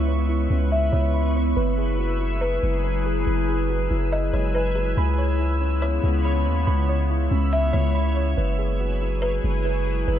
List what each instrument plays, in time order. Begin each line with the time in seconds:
Already playing: 808-style bass C#2, synth keys C#3 B5, ambient pad C#3 G#3 B3 E4, synth texture B4 E5 C#6
0.08 synth keys C#5
0.29 synth keys E4
0.50 808-style bass C#2, synth keys C#4
0.72 kalimba E5
0.92 808-style bass C#2, synth keys C#3, kalimba C#5
1.14 synth keys B5
1.36 synth keys C#5
1.56 808-style bass F#1, ambient pad F#3 G#4 B4, synth keys B4, synth texture G#5 E6
1.78 synth keys G#4
1.99 synth keys F#4
2.21 synth keys E4
2.41 kalimba B4
2.63 808-style bass F#1, synth keys G#3
2.84 synth keys B4
3.06 synth keys G#4
3.27 808-style bass F#1, synth keys B4
3.48 synth keys G#4
3.70 synth keys F#4
3.90 808-style bass F#1, synth keys E4
4.12 kalimba D#5
4.33 808-style bass F#1, synth keys G#3, kalimba C#5
4.54 synth keys B4, kalimba B4
4.75 kalimba G#4, synth keys G#4
4.97 808-style bass C#2, ambient pad C#3 G#3 B3, synth texture C#5 B5, synth keys B5
5.18 synth keys C#5
5.40 synth keys E4
5.61 synth keys C#4
5.82 kalimba C#5
6.04 808-style bass C#2, synth keys C#3
6.25 synth keys B5
6.46 808-style bass D#2, synth keys C#5
6.67 808-style bass C#2, synth keys B5
6.89 synth keys C#5
7.10 synth keys E4
7.31 808-style bass C#2, synth keys C#4
7.53 kalimba E5
7.73 808-style bass C#2, synth keys C#3, kalimba C#5
7.95 synth keys B5
8.17 synth keys C#5
8.37 808-style bass F#1, ambient pad F#3 E4 G#4 B4, synth keys B4, synth texture B4 G#5
8.59 synth keys G#4
8.80 synth keys F#4
9.02 synth keys E4
9.22 kalimba B4
9.44 808-style bass F#1, synth keys G#3
9.65 synth keys B4
9.87 synth keys G#4
10.08 808-style bass F#1, synth keys B4, noise sweep